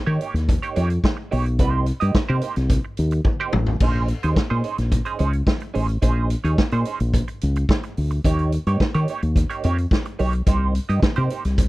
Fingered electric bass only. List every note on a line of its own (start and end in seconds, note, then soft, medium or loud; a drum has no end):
0.07 0.17 D#3 loud
0.34 0.55 D#2 medium
0.77 0.97 F2 medium
1.33 1.59 B1 medium
1.59 1.90 C2 loud
2.02 2.12 G2 medium
2.29 2.40 C3 medium
2.57 2.77 C2 loud
2.99 3.19 D#2 medium
3.54 3.75 A1 medium
3.80 4.12 A#1 loud
4.24 4.34 D#2 medium
4.51 4.61 A#2 medium
4.78 4.99 A#1 medium
5.20 5.41 C#2 medium
5.76 5.96 A1 medium
6.02 6.34 A#1 loud
6.44 6.55 D#2 medium
6.72 6.83 A#2 medium
7.00 7.21 A#1 medium
7.43 7.63 C#2 loud
7.98 8.18 D2 medium
8.25 8.56 D#2 loud
8.67 8.77 G2 loud
8.95 9.05 D#3 loud
9.23 9.43 D#2 medium
9.65 9.85 F2 loud
10.20 10.40 B1 medium
10.46 10.78 C2 loud
10.89 10.99 G2 medium
11.03 muted fingered electric bass stroke soft
11.18 11.28 C3 loud
11.45 11.66 C2 medium